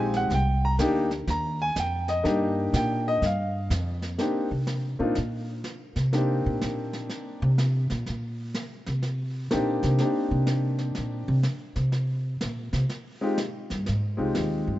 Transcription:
0.00 0.29 A#1 medium
0.00 0.30 G#3 medium
0.00 0.31 C4 medium
0.00 0.31 D#4 medium
0.00 0.31 G4 medium
0.00 0.15 G#5 loud
0.14 0.31 F#5 loud
0.14 snare soft
0.30 0.77 C2 medium
0.30 brush sweep soft
0.30 kick soft
0.30 snare medium
0.34 0.63 G5 medium
0.65 0.74 A#5 loud
0.79 1.26 D2 medium
0.79 1.08 A#3 medium
0.79 1.08 D4 medium
0.79 1.08 D#4 medium
0.79 1.09 G4 medium
0.79 kick soft
0.79 snare medium
0.79 hi-hat pedal medium
1.11 snare soft
1.27 1.75 D#2 medium
1.27 1.60 A#5 medium
1.27 brush sweep medium
1.27 kick soft
1.27 snare soft
1.62 1.77 G#5 loud
1.76 2.23 F2 medium
1.76 2.09 G5 medium
1.76 kick soft
1.76 snare medium
1.76 hi-hat pedal medium
2.08 2.54 D#5 medium
2.08 snare soft
2.24 2.72 G2 medium
2.24 3.21 A#3 medium
2.24 3.22 D4 medium
2.24 3.22 D#4 medium
2.24 3.22 G4 medium
2.24 brush sweep medium
2.24 kick soft
2.24 snare medium
2.73 3.20 A#2 medium
2.73 3.06 G5 medium
2.73 kick soft
2.73 snare medium
2.73 hi-hat pedal medium
3.08 3.23 D#5 loud
3.22 3.69 G2 medium
3.22 3.69 F5 medium
3.22 brush sweep soft
3.22 kick soft
3.22 snare soft
3.70 4.17 F2 medium
3.70 kick soft
3.70 snare medium
3.70 hi-hat pedal medium
4.02 snare soft
4.18 4.47 A#3 medium
4.18 4.48 C4 soft
4.18 4.48 D4 medium
4.18 4.48 D#4 medium
4.18 4.48 G4 medium
4.18 brush sweep medium
4.18 snare soft
4.51 4.96 C3 medium
4.67 snare medium
4.99 5.15 A#2 medium
4.99 5.14 A#3 medium
4.99 5.14 C4 medium
4.99 5.14 D4 medium
4.99 5.15 D#4 medium
4.99 5.15 F4 medium
5.15 5.62 A#2 medium
5.15 brush sweep soft
5.15 snare soft
5.64 snare medium
5.96 6.41 C3 medium
5.96 snare soft
6.13 7.48 A#3 medium
6.13 7.48 C4 medium
6.13 7.48 D4 medium
6.13 7.49 D#4 medium
6.13 7.49 G4 medium
6.13 brush sweep soft
6.13 snare soft
6.46 6.61 A#2 medium
6.61 7.07 A#2 medium
6.61 snare medium
6.93 snare soft
7.09 brush sweep soft
7.09 snare soft
7.42 7.87 C3 loud
7.58 snare medium
7.90 8.07 A#2 medium
7.90 snare soft
8.06 8.53 A#2 medium
8.06 brush sweep medium
8.06 snare soft
8.54 snare medium
8.86 9.48 C3 medium
8.86 snare soft
9.03 brush sweep medium
9.03 snare soft
9.51 9.83 A#2 medium
9.51 9.99 A#3 medium
9.51 9.99 C4 medium
9.51 9.99 D4 medium
9.51 10.00 D#4 medium
9.51 10.00 G4 medium
9.51 snare medium
9.83 10.00 C3 medium
9.83 snare soft
9.99 11.35 A#3 medium
9.99 11.35 C4 soft
9.99 11.35 D4 soft
9.99 11.36 D#4 soft
9.99 11.36 G4 medium
9.99 brush sweep soft
9.99 snare soft
10.31 10.92 C3 medium
10.47 snare medium
10.79 snare soft
10.95 11.27 A#2 medium
10.95 brush sweep soft
10.95 snare soft
11.28 11.44 C3 loud
11.43 snare medium
11.76 12.37 C3 medium
11.76 snare soft
11.92 brush sweep medium
11.92 snare soft
12.41 12.72 A#2 medium
12.41 snare medium
12.73 12.83 C3 medium
12.73 snare soft
12.89 brush sweep medium
12.89 snare soft
13.21 13.36 G#3 medium
13.21 13.36 C4 medium
13.21 13.37 D#4 medium
13.21 13.37 F4 medium
13.21 13.37 G4 medium
13.38 snare medium
13.70 13.87 G2 medium
13.70 snare soft
13.86 14.18 G#2 medium
13.86 brush sweep medium
13.86 snare medium
14.17 14.35 C2 medium
14.17 14.79 G#3 medium
14.17 14.79 C4 soft
14.17 14.79 D#4 soft
14.17 14.79 F4 soft
14.17 14.79 G4 medium
14.35 14.67 D#2 medium
14.35 snare medium
14.67 14.79 G2 medium

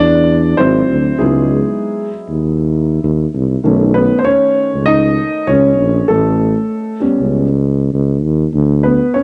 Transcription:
0.00 0.55 E2 medium
0.00 0.55 D4 medium
0.00 0.59 D5 loud
0.57 0.82 G#1 loud
0.57 1.16 F#3 medium
0.57 1.16 C4 medium
0.57 1.17 E4 medium
0.57 1.21 C5 medium
0.89 1.13 D2 medium
1.18 1.67 C#2 loud
1.18 3.60 F#3 soft
1.18 2.08 G#3 medium
1.18 3.60 B3 soft
1.18 3.61 D#4 medium
1.18 3.60 E4 medium
1.18 2.07 G#4 medium
2.30 3.00 D#2 medium
3.04 3.27 D#2 medium
3.34 3.58 C2 medium
3.64 4.12 B1 loud
3.64 6.05 D#3 medium
3.64 6.05 A3 medium
3.64 4.25 C#4 medium
3.94 4.18 B3 medium
3.94 4.18 B4 medium
4.19 4.25 C5 medium
4.25 4.83 C#4 medium
4.25 4.88 C#5 medium
4.75 5.22 C#2 medium
4.86 5.44 D#4 medium
4.86 5.49 D#5 loud
5.47 5.80 C#2 medium
5.47 6.06 C#4 medium
5.47 6.11 C#5 medium
5.79 6.02 A#1 medium
6.08 6.57 A1 loud
6.08 6.98 A3 medium
6.08 6.96 A4 medium
7.00 7.43 G3 soft
7.00 7.44 B3 soft
7.00 7.44 C#4 medium
7.20 7.89 C#2 medium
7.93 8.25 C#2 medium
8.24 8.47 D#2 medium
8.54 9.01 D2 loud
8.83 9.13 B3 medium
8.83 9.16 B4 medium
9.14 9.23 C#4 medium
9.14 9.23 C#5 medium

